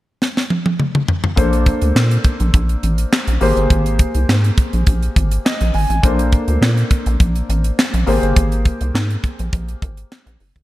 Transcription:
0.22 snare medium
0.37 snare medium
0.50 high tom medium
0.66 high tom medium
0.80 mid tom medium
0.95 mid tom medium
1.08 floor tom loud
1.24 floor tom loud
1.36 1.71 A#1 loud
1.36 3.37 A#3 medium
1.36 3.37 D4 medium
1.36 3.37 A4 medium
1.36 3.37 C5 medium
1.36 kick loud
1.36 closed hi-hat medium
1.53 closed hi-hat soft
1.66 kick loud
1.66 closed hi-hat medium
1.82 1.92 D2 medium
1.82 closed hi-hat medium
1.96 2.18 A#2 loud
1.96 snare loud
1.96 clap medium
2.11 closed hi-hat soft
2.24 kick medium
2.24 closed hi-hat medium
2.40 2.51 A#1 loud
2.40 closed hi-hat soft
2.54 2.76 A#1 loud
2.54 kick loud
2.54 closed hi-hat medium
2.69 closed hi-hat soft
2.83 3.05 A1 medium
2.83 closed hi-hat medium
2.98 closed hi-hat medium
3.13 snare loud
3.13 clap loud
3.27 3.38 A#1 medium
3.27 closed hi-hat medium
3.41 3.53 G#1 loud
3.41 5.70 A#3 medium
3.41 5.70 G4 medium
3.41 5.71 G#4 medium
3.41 5.71 C5 medium
3.41 open hi-hat medium
3.57 3.67 G1 medium
3.57 closed hi-hat soft
3.70 4.04 G#1 loud
3.70 kick loud
3.70 closed hi-hat medium
3.86 closed hi-hat medium
3.99 kick loud
3.99 closed hi-hat medium
4.15 4.25 C2 medium
4.15 closed hi-hat medium
4.29 4.51 G#2 loud
4.29 snare loud
4.29 clap medium
4.44 closed hi-hat soft
4.58 kick loud
4.58 closed hi-hat medium
4.73 4.84 A#1 medium
4.73 closed hi-hat soft
4.87 5.09 A#1 loud
4.87 kick loud
4.87 closed hi-hat medium
5.02 closed hi-hat soft
5.16 5.38 G#1 medium
5.16 kick loud
5.16 closed hi-hat medium
5.31 closed hi-hat medium
5.45 5.72 D#5 medium
5.45 snare loud
5.45 clap medium
5.61 5.71 A#1 loud
5.61 closed hi-hat medium
5.74 5.86 G#1 medium
5.74 6.01 G#5 medium
5.74 open hi-hat medium
5.90 6.00 A1 medium
5.90 closed hi-hat medium
6.03 6.37 A#1 loud
6.03 8.03 A#3 medium
6.03 8.03 D4 medium
6.03 8.03 A4 medium
6.03 8.04 C5 medium
6.03 kick loud
6.03 closed hi-hat medium
6.19 closed hi-hat medium
6.32 kick medium
6.32 closed hi-hat medium
6.48 6.58 D2 medium
6.48 closed hi-hat soft
6.61 6.84 A#2 loud
6.61 snare loud
6.61 clap medium
6.77 closed hi-hat soft
6.91 kick medium
6.91 closed hi-hat medium
7.06 7.17 A#1 loud
7.06 closed hi-hat soft
7.20 7.42 A#1 medium
7.20 kick loud
7.20 closed hi-hat medium
7.36 closed hi-hat soft
7.49 7.71 A1 loud
7.49 closed hi-hat medium
7.64 closed hi-hat medium
7.79 snare loud
7.79 clap medium
7.94 8.04 A#1 loud
7.94 closed hi-hat medium
8.06 8.19 G#1 loud
8.06 10.36 A#3 medium
8.06 10.36 G4 medium
8.06 10.36 G#4 medium
8.06 10.37 C5 medium
8.06 open hi-hat medium
8.23 8.33 G1 medium
8.23 closed hi-hat medium
8.36 8.70 G#1 loud
8.36 kick loud
8.36 closed hi-hat medium
8.52 closed hi-hat soft
8.65 kick loud
8.65 closed hi-hat medium
8.81 8.91 C2 medium
8.81 closed hi-hat medium
8.94 9.17 G#2 loud
8.94 snare loud
8.94 clap medium
9.10 closed hi-hat soft
9.24 kick medium
9.24 closed hi-hat medium
9.39 9.50 A#1 medium
9.39 closed hi-hat soft
9.53 9.75 A#1 loud
9.53 kick loud
9.53 closed hi-hat medium
9.68 closed hi-hat soft
9.82 10.04 G#1 medium
9.82 kick loud
9.82 closed hi-hat medium
9.97 closed hi-hat medium
10.12 snare loud
10.12 clap medium
10.26 10.37 A#1 medium
10.26 closed hi-hat medium
10.40 10.52 F#1 medium
10.40 open hi-hat medium
10.56 10.63 G1 medium
10.56 kick medium
10.56 closed hi-hat medium

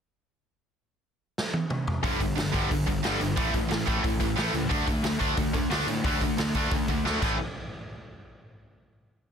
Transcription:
1.38 snare medium
1.54 high tom medium
1.70 mid tom medium
1.88 floor tom loud
2.03 2.16 G1 medium
2.03 2.19 G2 medium
2.03 2.19 D3 medium
2.03 2.20 G3 medium
2.03 kick loud
2.03 open hi-hat medium
2.20 2.33 G1 medium
2.20 2.36 G2 medium
2.20 2.36 D3 medium
2.20 kick medium
2.20 open hi-hat medium
2.36 2.49 G1 medium
2.36 2.52 G2 medium
2.36 2.52 D3 medium
2.36 snare loud
2.36 open hi-hat medium
2.54 2.66 G1 medium
2.54 2.69 G2 loud
2.54 2.70 D3 loud
2.54 2.70 G3 loud
2.54 kick medium
2.54 open hi-hat medium
2.71 2.83 G1 medium
2.71 2.86 G2 medium
2.71 2.86 D3 medium
2.71 kick loud
2.71 open hi-hat medium
2.87 2.99 G1 medium
2.87 3.02 G2 medium
2.87 3.03 D3 medium
2.87 kick medium
2.87 open hi-hat medium
3.04 3.17 G1 medium
3.04 3.19 G2 medium
3.04 3.20 D3 loud
3.04 3.20 G3 loud
3.04 snare loud
3.04 open hi-hat medium
3.20 3.33 G1 medium
3.20 3.35 G2 medium
3.20 3.36 D3 medium
3.20 open hi-hat medium
3.37 3.50 A1 medium
3.37 3.53 A2 medium
3.37 3.53 E3 loud
3.37 3.53 A3 loud
3.37 kick loud
3.37 open hi-hat medium
3.54 3.66 A1 medium
3.54 3.69 A2 medium
3.54 3.69 E3 medium
3.54 kick medium
3.54 open hi-hat medium
3.70 3.83 A1 medium
3.70 3.86 A2 medium
3.70 3.86 E3 medium
3.70 snare loud
3.70 open hi-hat medium
3.87 3.99 A1 medium
3.87 4.03 A2 medium
3.87 4.04 E3 loud
3.87 4.03 A3 loud
3.87 kick medium
3.87 open hi-hat medium
4.04 4.16 A1 medium
4.04 4.19 A2 medium
4.04 4.19 E3 medium
4.04 kick loud
4.04 open hi-hat medium
4.20 4.33 A1 medium
4.20 4.35 A2 medium
4.20 4.35 E3 medium
4.20 kick medium
4.20 open hi-hat medium
4.37 4.50 A1 medium
4.37 4.52 A2 loud
4.37 4.53 E3 loud
4.37 4.54 A3 loud
4.37 snare loud
4.37 open hi-hat medium
4.53 4.66 C#2 medium
4.53 4.69 A2 medium
4.53 4.69 E3 medium
4.53 open hi-hat medium
4.69 4.83 D2 medium
4.69 4.86 D3 medium
4.69 4.86 A3 loud
4.69 4.86 D4 loud
4.69 kick loud
4.69 open hi-hat medium
4.87 5.00 D2 loud
4.87 5.02 D3 medium
4.87 5.02 A3 medium
4.87 kick medium
4.87 open hi-hat medium
5.03 5.16 D2 medium
5.03 5.18 D3 medium
5.03 5.19 A3 medium
5.03 snare loud
5.03 open hi-hat medium
5.19 5.33 D2 medium
5.19 5.36 D3 loud
5.19 5.36 A3 loud
5.19 5.36 D4 loud
5.19 kick medium
5.19 open hi-hat medium
5.37 5.50 D2 medium
5.37 5.52 D3 medium
5.37 5.52 A3 medium
5.37 kick loud
5.37 open hi-hat medium
5.53 5.66 D2 medium
5.53 5.69 D3 medium
5.53 5.69 A3 medium
5.53 kick medium
5.53 open hi-hat medium
5.70 5.83 D2 medium
5.70 5.86 D3 medium
5.70 5.86 A3 loud
5.70 5.87 D4 loud
5.70 snare loud
5.70 open hi-hat medium
5.87 6.00 A2 medium
5.87 6.03 D3 medium
5.87 6.03 A3 medium
5.87 open hi-hat medium
6.04 6.17 D2 medium
6.04 6.20 D3 medium
6.04 6.20 A3 medium
6.04 6.21 D4 loud
6.04 kick loud
6.04 open hi-hat medium
6.21 6.34 D2 medium
6.21 6.37 D3 medium
6.21 6.37 A3 medium
6.21 kick medium
6.21 open hi-hat medium
6.37 6.50 D2 medium
6.37 6.54 D3 medium
6.37 6.54 A3 medium
6.37 snare loud
6.37 open hi-hat medium
6.54 6.67 D2 medium
6.54 6.71 D3 medium
6.54 6.72 A3 loud
6.54 6.72 D4 loud
6.54 kick medium
6.54 open hi-hat medium
6.71 6.84 D2 medium
6.71 6.88 D3 medium
6.71 6.88 A3 medium
6.71 kick loud
6.71 open hi-hat medium
6.88 7.00 D2 medium
6.88 7.04 D3 medium
6.88 7.04 A3 medium
6.88 kick medium
6.88 open hi-hat medium
7.05 7.18 D2 medium
7.05 7.21 D3 loud
7.05 7.21 A3 loud
7.05 7.22 D4 loud
7.05 snare medium
7.22 7.38 A1 medium
7.22 7.36 A2 medium
7.22 7.36 E3 loud
7.22 7.36 A3 loud
7.22 kick loud
7.22 crash medium

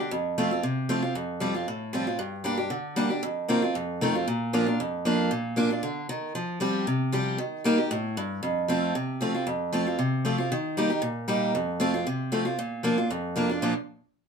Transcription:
0.00 0.11 D4 soft
0.11 0.60 F2 medium
0.38 0.50 F3 medium
0.38 0.50 A3 medium
0.38 0.50 C4 loud
0.38 0.50 F4 medium
0.51 0.63 C4 medium
0.51 0.62 F4 medium
0.63 1.12 C3 medium
0.89 1.02 F3 medium
0.89 1.02 A3 medium
0.89 1.02 C4 medium
0.89 1.01 F4 medium
1.02 1.15 C4 soft
1.02 1.14 F4 medium
1.15 1.64 F2 medium
1.40 1.53 F3 medium
1.40 1.54 G3 medium
1.40 1.54 C4 medium
1.40 1.53 F4 medium
1.55 1.67 C4 medium
1.55 1.66 F4 medium
1.68 2.17 A2 medium
1.93 2.06 F3 medium
1.93 2.06 G3 medium
1.93 2.07 C4 medium
1.93 2.06 F4 medium
2.07 2.19 C4 soft
2.07 2.18 F4 medium
2.19 2.68 G2 medium
2.44 2.57 G3 medium
2.44 2.58 A#3 medium
2.44 2.58 D4 medium
2.44 2.56 G4 loud
2.57 2.70 D4 soft
2.57 2.70 G4 medium
2.70 3.20 D3 medium
2.96 3.10 G3 loud
2.96 3.10 A#3 medium
2.96 3.10 D4 medium
2.96 3.09 G4 medium
3.10 3.23 D4 soft
3.10 3.22 G4 medium
3.23 3.72 F2 medium
3.48 3.62 D#3 medium
3.48 3.62 A#3 medium
3.48 3.62 C4 medium
3.48 3.61 F4 medium
3.62 3.75 C4 medium
3.62 3.74 F4 medium
3.75 4.25 F2 medium
4.01 4.14 D#3 medium
4.01 4.15 A3 medium
4.01 4.15 C4 medium
4.01 4.14 F4 loud
4.15 4.27 C4 soft
4.15 4.27 F4 medium
4.28 4.77 A#2 medium
4.53 4.66 F3 medium
4.53 4.66 A#3 medium
4.53 4.66 D4 medium
4.53 4.65 F4 loud
4.66 4.79 D4 medium
4.66 4.78 F4 medium
4.80 5.29 F2 medium
5.05 5.30 F3 medium
5.05 5.30 A#3 medium
5.05 5.30 D4 medium
5.05 5.30 F4 loud
5.31 5.80 A#2 medium
5.56 5.70 F3 medium
5.56 5.70 A#3 medium
5.56 5.70 D4 medium
5.56 5.69 F4 medium
5.70 5.83 D4 soft
5.70 5.82 F4 medium
5.83 6.08 D3 medium
6.09 6.34 D#3 medium
6.35 6.59 F3 medium
6.60 6.85 F3 medium
6.60 6.85 G3 loud
6.60 6.86 C4 medium
6.60 6.86 G4 loud
6.87 7.36 C3 medium
7.12 7.37 F3 medium
7.12 7.38 G3 medium
7.12 7.38 C4 loud
7.12 7.38 G4 medium
7.38 7.88 D#3 medium
7.64 7.78 G3 medium
7.64 7.78 A#3 loud
7.64 7.78 D#4 loud
7.64 7.77 G4 loud
7.78 7.91 D#4 soft
7.78 7.90 G4 medium
7.91 8.15 A2 medium
8.17 8.42 G2 medium
8.43 8.92 F2 medium
8.68 8.93 F3 medium
8.68 8.94 A3 medium
8.68 8.94 C4 medium
8.68 8.94 F4 medium
8.95 9.44 C3 medium
9.21 9.34 F3 medium
9.21 9.34 A3 medium
9.21 9.34 C4 medium
9.21 9.33 F4 medium
9.35 9.47 C4 soft
9.35 9.46 F4 medium
9.47 9.96 F2 medium
9.73 9.85 F3 medium
9.73 9.86 A3 medium
9.73 9.86 C4 medium
9.73 9.85 F4 loud
9.87 9.99 C4 soft
9.87 9.98 F4 medium
9.99 10.48 C3 medium
10.25 10.37 F3 medium
10.25 10.38 A3 medium
10.25 10.38 C4 medium
10.25 10.37 F4 medium
10.38 10.51 C4 soft
10.38 10.50 F4 medium
10.52 11.00 D#3 loud
10.77 10.90 G3 medium
10.77 10.90 A#3 medium
10.77 10.90 D#4 medium
10.77 10.89 G4 medium
10.90 11.03 D#4 medium
10.90 11.02 G4 medium
11.02 11.51 A#2 medium
11.28 11.53 G3 medium
11.28 11.53 A#3 medium
11.28 11.53 D#4 medium
11.28 11.53 G4 loud
11.55 12.04 F2 medium
11.80 11.93 F3 medium
11.80 11.93 A3 medium
11.80 11.93 C4 loud
11.80 11.93 F4 loud
11.94 12.06 C4 medium
11.94 12.06 F4 medium
12.07 12.56 C3 medium
12.32 12.45 F3 medium
12.32 12.45 A3 medium
12.32 12.45 C4 medium
12.32 12.44 F4 medium
12.45 12.58 C4 medium
12.45 12.57 F4 medium
12.59 13.08 A#2 medium
12.83 12.97 F3 medium
12.83 12.97 A#3 medium
12.83 12.97 D4 medium
12.83 12.97 F4 medium
12.98 13.10 D4 soft
12.98 13.09 F4 medium
13.10 13.60 F2 medium
13.36 13.49 F3 medium
13.36 13.49 A#3 medium
13.36 13.49 D4 medium
13.36 13.48 F4 medium
13.49 13.62 D4 medium
13.49 13.61 F4 medium
13.62 13.73 A#2 medium
13.62 13.73 F3 medium
13.62 13.73 A#3 medium
13.62 13.73 D4 medium
13.62 13.73 F4 medium

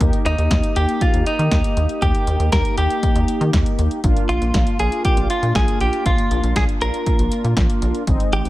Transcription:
0.00 0.10 D#2 loud
0.00 4.00 A#3 medium
0.00 4.00 D#4 medium
0.00 4.00 G4 medium
0.00 kick loud
0.00 closed hi-hat medium
0.13 closed hi-hat soft
0.26 0.36 D#2 loud
0.26 0.78 D#4 medium
0.26 closed hi-hat medium
0.38 0.48 D#2 medium
0.38 closed hi-hat medium
0.51 0.61 D#2 loud
0.51 kick loud
0.51 snare loud
0.51 closed hi-hat medium
0.64 closed hi-hat medium
0.76 0.86 D#2 loud
0.76 1.02 G4 medium
0.76 closed hi-hat medium
0.89 closed hi-hat soft
1.01 1.26 F4 medium
1.01 kick loud
1.01 closed hi-hat medium
1.14 1.24 D#2 loud
1.14 closed hi-hat medium
1.26 2.05 D#4 medium
1.26 closed hi-hat medium
1.39 1.49 D#3 loud
1.39 closed hi-hat soft
1.51 1.62 D#2 loud
1.51 kick loud
1.51 snare loud
1.51 closed hi-hat medium
1.64 closed hi-hat medium
1.77 1.87 D#2 loud
1.77 closed hi-hat medium
1.89 closed hi-hat soft
2.02 2.12 D#2 loud
2.02 2.52 G4 loud
2.02 kick loud
2.02 closed hi-hat medium
2.15 closed hi-hat soft
2.27 2.37 D#2 loud
2.27 closed hi-hat medium
2.40 2.50 D#2 loud
2.40 closed hi-hat medium
2.52 2.62 D#2 medium
2.52 2.76 A#4 medium
2.52 kick loud
2.52 snare loud
2.52 closed hi-hat medium
2.65 closed hi-hat medium
2.78 2.88 D#2 loud
2.78 3.49 G4 medium
2.78 closed hi-hat medium
2.90 closed hi-hat soft
3.03 kick loud
3.03 closed hi-hat medium
3.16 3.25 D#2 loud
3.16 closed hi-hat medium
3.28 closed hi-hat medium
3.41 3.51 D#3 loud
3.41 closed hi-hat soft
3.53 3.63 D#2 loud
3.53 kick loud
3.53 snare loud
3.53 closed hi-hat medium
3.66 closed hi-hat medium
3.79 3.89 D#2 loud
3.79 closed hi-hat medium
3.91 closed hi-hat soft
4.04 4.14 A#1 loud
4.04 8.03 A#3 medium
4.04 8.03 D4 medium
4.04 8.03 F4 medium
4.04 kick loud
4.04 closed hi-hat medium
4.17 closed hi-hat soft
4.29 4.39 A#1 loud
4.29 4.79 F4 medium
4.29 closed hi-hat medium
4.42 4.52 A#1 medium
4.42 closed hi-hat medium
4.54 4.64 A#1 loud
4.54 kick loud
4.54 snare loud
4.54 closed hi-hat medium
4.67 closed hi-hat medium
4.79 4.89 A#1 loud
4.79 5.03 G#4 medium
4.79 closed hi-hat medium
4.92 closed hi-hat medium
5.05 5.30 G4 medium
5.05 kick loud
5.05 closed hi-hat medium
5.17 5.27 A#1 loud
5.17 closed hi-hat medium
5.30 5.55 F4 medium
5.30 closed hi-hat medium
5.43 5.52 A#2 loud
5.43 closed hi-hat soft
5.55 5.65 A#1 loud
5.55 5.81 G#4 medium
5.55 kick loud
5.55 snare loud
5.55 closed hi-hat medium
5.68 closed hi-hat medium
5.80 5.90 A#1 medium
5.80 6.06 G4 medium
5.80 closed hi-hat medium
5.93 closed hi-hat soft
6.06 6.16 A#1 loud
6.06 6.56 F4 medium
6.06 kick loud
6.06 closed hi-hat medium
6.18 closed hi-hat soft
6.31 6.41 A#1 loud
6.31 closed hi-hat medium
6.43 6.53 A#1 loud
6.43 closed hi-hat medium
6.56 6.66 A#1 loud
6.56 6.63 G#4 medium
6.56 kick loud
6.56 snare loud
6.56 closed hi-hat medium
6.69 closed hi-hat medium
6.81 6.91 A#1 medium
6.81 7.53 A#4 loud
6.81 closed hi-hat medium
6.94 closed hi-hat soft
7.06 kick loud
7.06 closed hi-hat medium
7.19 7.29 A#1 medium
7.19 closed hi-hat medium
7.32 closed hi-hat medium
7.44 7.54 A#2 loud
7.44 closed hi-hat soft
7.57 7.67 A#1 loud
7.57 kick loud
7.57 snare loud
7.57 closed hi-hat medium
7.70 closed hi-hat medium
7.82 7.92 A#1 loud
7.82 closed hi-hat medium
7.95 closed hi-hat soft
8.07 8.17 G#1 loud
8.07 8.49 G#3 medium
8.07 8.49 C4 medium
8.07 8.49 D#4 medium
8.07 kick loud
8.07 closed hi-hat medium
8.20 closed hi-hat soft
8.32 8.42 G#1 loud
8.32 8.49 G4 loud
8.32 closed hi-hat medium
8.45 8.49 G#1 medium
8.45 closed hi-hat medium

